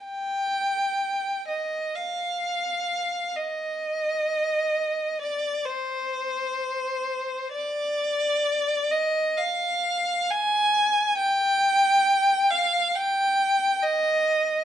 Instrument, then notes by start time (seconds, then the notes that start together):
violin
0.05 G5
1.47 D#5
1.95 F5
3.36 D#5
5.21 D5
5.65 C5
7.51 D5
8.90 D#5
9.37 F5
10.30 G#5
11.17 G5
12.50 F5
12.95 G5
13.82 D#5